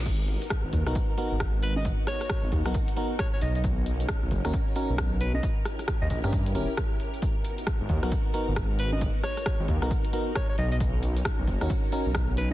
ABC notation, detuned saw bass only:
X:1
M:4/4
L:1/16
Q:"Swing 16ths" 1/4=134
K:G#m
V:1 name="Detuned saw bass" clef=bass
G,,,3 z2 G,,, D,, B,,, z3 G,,,4- G,,,- | G,,, z4 G,,, D,, B,,, z6 B,,,2- | B,,,4 z B,,, F,,, D,, z3 B,,,4- B,,, | z4 z D,, A,,, =G,,3 D,,, z4 z |
z4 z G,,, D,, B,,, z3 G,,,4- G,,,- | G,,, z4 G,,, D,, B,,, z6 B,,,2- | B,,,4 z B,,, F,,, D,, z3 B,,,4- B,,, |]